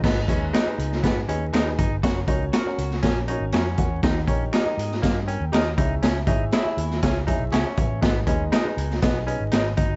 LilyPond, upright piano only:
<<
  \new Staff \with { instrumentName = "Upright piano" } { \time 4/4 \key gis \minor \tempo 4 = 120 << { r1 | r2. <e' cis''>8 <ais' fis''>8~ | <ais' fis''>8 r4. <g' dis''>8 <ais' g''>8 <cis'' ais''>4 | r2 r8 gis''8 <e'' fis'' cis'''>8 <b' e'' gis''>8~ |
<b' e'' gis''>8 r2 r8 cis''8 <fis' dis''>8 | } \\ { <dis' gis' b' dis''>16 r16 <dis' gis' b' dis''>8 r16 <dis' gis' b' dis''>8 r16 <dis' gis' b' dis''>16 r16 <dis' gis' b' dis''>8 r16 <dis' gis' b' dis''>8 r16 | <cis' fis' ais' cis''>16 r16 <cis' fis' ais' cis''>8 r16 <cis' fis' ais' cis''>8 r16 <cis' fis' ais' cis''>16 r16 <cis' fis' ais' cis''>8 r4 | <dis' g' ais' dis''>16 r16 <dis' g' ais' cis''>8 r16 <dis' g' ais' dis''>8 r4. r16 <e' gis' cis'' e''>8~ | <e' gis' cis'' e''>16 r16 <e' gis' cis'' e''>8 r16 <e' gis' cis'' e''>8 r16 <e' gis' cis'' e''>16 r16 <e' gis' cis'' e''>8 r4 |
<dis' gis' b' dis''>16 r16 <dis' gis' b' dis''>8 r16 <dis' gis' b' dis''>8 r16 <dis' gis' b' dis''>16 r16 <dis' gis' b' dis''>8 r4 | } >> }
  \new Staff \with { instrumentName = "Upright piano" } { \clef bass \time 4/4 \key gis \minor gis,4. r2 r8 | r1 | dis4. r2 cis8~ | cis4 r2. |
gis,4. r2 r8 | }
>>